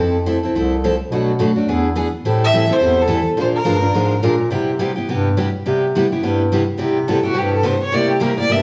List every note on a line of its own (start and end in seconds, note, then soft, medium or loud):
0.00 0.42 F2 medium
0.00 0.16 F3 medium
0.00 0.17 C4 medium
0.00 0.17 E4 medium
0.00 0.17 A4 medium
0.26 0.36 F3 medium
0.26 0.37 C4 medium
0.26 0.37 E4 medium
0.26 0.37 A4 medium
0.43 0.55 C4 soft
0.43 0.55 E4 soft
0.43 0.54 A4 medium
0.53 0.99 C2 medium
0.53 0.74 F3 medium
0.53 0.74 C4 medium
0.53 0.74 E4 medium
0.53 0.74 A4 medium
0.84 0.94 F3 medium
0.84 0.94 C4 medium
0.84 0.94 E4 medium
0.84 0.94 A4 medium
1.11 1.56 B2 medium
1.11 1.30 B2 medium
1.11 1.30 F#3 medium
1.11 1.31 A3 medium
1.11 1.31 D4 medium
1.11 1.31 F#4 medium
1.39 1.50 B2 medium
1.39 1.50 F#3 medium
1.39 1.50 A3 medium
1.39 1.50 D4 medium
1.39 1.51 F#4 medium
1.56 1.68 A3 soft
1.56 1.68 D4 soft
1.56 1.67 F#4 medium
1.68 2.13 E2 medium
1.68 1.87 E3 medium
1.68 1.87 B3 medium
1.68 1.87 D4 medium
1.68 1.87 G#4 medium
1.96 2.06 E3 medium
1.96 2.07 B3 medium
1.96 2.07 D4 medium
1.96 2.07 G#4 medium
2.24 2.69 A2 medium
2.24 2.44 E3 medium
2.24 2.44 G3 medium
2.24 2.44 C4 medium
2.24 2.44 E4 medium
2.24 2.44 A4 medium
2.45 2.75 E5 medium
2.53 2.63 E3 medium
2.53 2.64 G3 medium
2.53 2.64 C4 medium
2.53 2.64 E4 medium
2.53 2.64 A4 medium
2.69 2.81 C4 soft
2.69 2.80 E4 soft
2.69 2.80 A4 medium
2.73 3.03 C5 medium
2.81 3.26 E2 medium
2.81 3.00 E3 medium
2.81 3.00 G3 medium
2.81 3.01 C4 medium
2.81 3.00 E4 medium
2.81 3.01 A4 medium
3.02 3.28 A4 medium
3.08 3.19 E3 medium
3.08 3.19 G3 medium
3.08 3.20 C4 medium
3.08 3.20 E4 medium
3.08 3.20 A4 medium
3.37 3.60 A#2 medium
3.37 3.57 F3 medium
3.37 3.57 G#3 medium
3.37 3.57 D4 medium
3.37 3.57 F4 medium
3.37 3.57 A#4 medium
3.37 3.47 C5 medium
3.56 4.36 A#4 medium
3.65 3.90 G2 medium
3.65 3.76 F3 medium
3.65 3.76 G#3 medium
3.65 3.76 D4 medium
3.65 3.77 F4 medium
3.65 3.77 A#4 medium
3.81 3.94 D4 soft
3.81 3.94 F4 medium
3.81 3.93 A#4 medium
3.94 4.19 G#2 medium
3.94 4.14 F3 medium
3.94 4.14 G#3 medium
3.94 4.14 D4 medium
3.94 4.14 F4 medium
3.94 4.14 A#4 medium
4.23 4.47 A#2 medium
4.23 4.33 F3 medium
4.23 4.34 G#3 medium
4.23 4.34 D4 medium
4.23 4.34 F4 medium
4.23 4.34 A#4 medium
4.50 4.70 C3 medium
4.50 4.97 C3 medium
4.50 4.70 G3 medium
4.50 4.71 B3 medium
4.50 4.71 E4 medium
4.50 4.71 G4 medium
4.79 4.90 C3 medium
4.79 4.90 G3 medium
4.79 4.91 B3 medium
4.79 4.90 E4 medium
4.79 4.91 G4 medium
4.96 5.08 B3 soft
4.96 5.08 E4 medium
4.96 5.07 G4 medium
5.08 5.53 G2 medium
5.08 5.27 C3 medium
5.08 5.28 G3 medium
5.08 5.28 B3 medium
5.08 5.28 E4 medium
5.08 5.28 G4 medium
5.37 5.47 C3 medium
5.37 5.47 G3 medium
5.37 5.48 B3 medium
5.37 5.48 E4 medium
5.37 5.48 G4 medium
5.64 6.10 C3 medium
5.64 5.84 C3 medium
5.64 5.84 G3 medium
5.64 5.85 B3 medium
5.64 5.85 E4 medium
5.64 5.85 G4 medium
5.95 6.05 C3 medium
5.95 6.05 G3 medium
5.95 6.05 B3 medium
5.95 6.05 E4 medium
5.95 6.06 G4 medium
6.12 6.22 B3 soft
6.12 6.23 E4 medium
6.12 6.22 G4 medium
6.21 6.67 G2 medium
6.21 6.41 C3 medium
6.21 6.42 G3 medium
6.21 6.42 B3 medium
6.21 6.42 E4 medium
6.21 6.42 G4 medium
6.52 6.62 C3 medium
6.52 6.62 G3 medium
6.52 6.62 B3 medium
6.52 6.62 E4 medium
6.52 6.62 G4 medium
6.78 6.97 C3 medium
6.78 7.24 C3 medium
6.78 6.97 G3 medium
6.78 6.97 B3 medium
6.78 6.98 E4 medium
6.78 6.98 G4 medium
7.08 7.18 C3 medium
7.08 7.18 G3 medium
7.08 7.18 B3 medium
7.08 7.18 E4 medium
7.08 7.18 G4 medium
7.08 7.23 A4 medium
7.23 7.33 B3 soft
7.23 7.34 E4 soft
7.23 7.40 F#4 medium
7.23 7.34 G4 medium
7.34 7.80 G2 medium
7.34 7.53 C3 medium
7.34 7.54 G3 medium
7.34 7.54 B3 medium
7.34 7.54 E4 medium
7.34 7.54 G4 medium
7.38 7.52 G4 medium
7.53 7.67 A4 medium
7.63 7.74 C3 medium
7.63 7.74 G3 medium
7.63 7.74 B3 medium
7.63 7.74 E4 medium
7.63 7.75 G4 medium
7.63 7.81 C5 medium
7.83 7.96 C#5 medium
7.92 8.37 C3 medium
7.92 8.11 C3 medium
7.92 8.11 G3 medium
7.92 8.11 A#3 medium
7.92 8.12 E4 medium
7.92 8.11 G4 medium
7.92 8.10 D5 medium
8.11 8.24 G4 soft
8.20 8.30 C3 medium
8.20 8.31 G3 medium
8.20 8.31 A#3 medium
8.20 8.31 E4 medium
8.20 8.31 G4 medium
8.20 8.38 A#4 medium
8.38 8.48 A#3 soft
8.38 8.49 E4 medium
8.38 8.48 G4 medium
8.38 8.54 D5 medium
8.49 8.62 G2 medium
8.49 8.62 C3 medium
8.49 8.62 G3 medium
8.49 8.62 A#3 medium
8.49 8.62 E4 medium
8.49 8.62 G4 medium
8.49 8.62 E5 medium